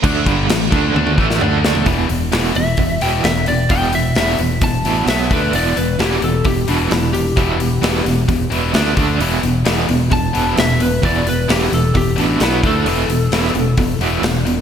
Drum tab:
CC |x-x-x-x---------|----------------|----------------|----------------|
HH |----------------|o-o-o-o-o-o-o-o-|o-o-o-o-o-o-o-o-|o-o-o-o-o-o-o-o-|
SD |----o------o--o-|----o-------o---|----o-------o---|----o-------o---|
T1 |--------oo------|----------------|----------------|----------------|
T2 |------------o---|----------------|----------------|----------------|
FT |---------------o|----------------|----------------|----------------|
BD |o-o---o---o-----|o-------o-------|o-------o-----o-|--------o-------|

CC |----------------|----------------|----------------|----------------|
HH |o-o-o-o-o-o-o-o-|o-o-o-o-o-o-o-o-|o-o-o-o-o-o-o-o-|o-o-o-o-o-o-o-o-|
SD |----o-o-----o---|----o-------o---|----o-------o---|----o-------o---|
T1 |----------------|----------------|----------------|----------------|
T2 |----------------|----------------|----------------|----------------|
FT |----------------|----------------|----------------|----------------|
BD |o-------o-----o-|--------o-------|o-------o-----o-|--------o-------|